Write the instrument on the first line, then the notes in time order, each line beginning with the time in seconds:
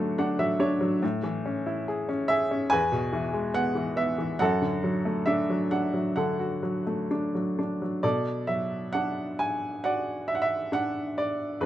upright piano
Already playing: F#2 D3 F#3 A3 D4 F#4
0.18 D4 F#5
0.39 F#3 E5
0.60 D4 C#5
0.81 F#3
1.02 A2
1.23 E3
1.46 C#4
1.66 E4
1.88 G#4
2.09 C#4
2.28 G#4 E5
2.51 C#4
2.70 E2 B4 G#5
2.92 B2
3.13 E3
3.33 G#3
3.54 B3 F#5
3.75 E3
3.96 B3 E5
4.18 E3
4.39 F#2 A4 F#5
4.62 D3
4.84 F#3
5.05 A3
5.26 D4 E5
5.50 F#3
5.71 D4 F#5
5.94 F#3
6.16 D3 A4 F#5
6.39 F#4
6.63 F#3
6.87 A3
7.11 D4
7.35 F#3
7.59 D4
7.82 F#3
8.03 B2 A4 D5
8.47 F#3 E5
8.93 D4 F#5
9.39 G#5
9.84 F#4 D5 F#5
10.28 E5
10.35 F#5
10.42 E5
10.72 D4 F#5
11.18 D5
11.61 E2 B4